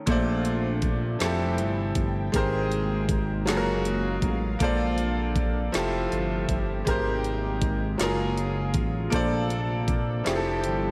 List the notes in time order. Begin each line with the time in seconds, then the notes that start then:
0.06 A#1 A#2 C3 D3 F3 A3 C4 D4 F4 C5, kick, closed hi-hat
0.12 D5
0.45 closed hi-hat
0.82 kick, closed hi-hat
1.19 F1 E3 F3 G3 C4 E4 G4 G5, snare, closed hi-hat
1.24 A4
1.58 G1, closed hi-hat
1.95 G1, kick, closed hi-hat
2.32 G#1 C3 D#3 G#3 A#3 C4 D#4 G4 G#4 A#4, kick, closed hi-hat
2.37 C5
2.72 closed hi-hat
3.09 kick, closed hi-hat
3.46 F#1 C#3 F#3 G#3 A#3 F4 F#4 G#4 F5, snare, closed hi-hat
3.50 A4
3.57 A#4
3.85 closed hi-hat
4.22 A1, kick, closed hi-hat
4.59 A#1 C3 D3 F3 A#3 C4 D4 F4 A4 C5, kick, closed hi-hat
4.64 D5
4.98 closed hi-hat
5.36 kick, closed hi-hat
5.72 F1 C3 F3 A3 E4 F4 G4 E5, snare, closed hi-hat
5.78 A4
6.12 G1, closed hi-hat
6.49 G1, kick, closed hi-hat
6.85 G#1 D#3 G3 G#3 A#3 C4 D#4 G4 A#4, kick, closed hi-hat
6.90 C5
7.24 closed hi-hat
7.62 kick, closed hi-hat
7.98 F#1 C#3 F3 F#3 G#3 C#4 F4 G#4, snare, closed hi-hat
8.03 A#4
8.38 closed hi-hat
8.74 A1, kick, closed hi-hat
9.10 A#1 C3 F3 A3 A#3 D4 A4 C5, kick, closed hi-hat
9.15 D5
9.50 closed hi-hat
9.88 kick, closed hi-hat
10.24 F1 E3 F3 G3 C4 E4 G4, snare, closed hi-hat
10.28 G4 G#4
10.36 A4
10.64 G1, closed hi-hat